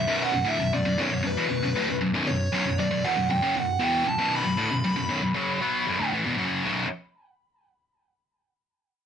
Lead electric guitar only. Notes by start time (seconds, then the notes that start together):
Already playing: E5
0.22 F#5
0.48 E5
0.74 D5
1.01 C#5
1.27 B4
2.27 C#5
2.80 D5
3.04 F#5
3.30 G5
3.57 F#5
3.83 G5
4.08 A5
4.35 B5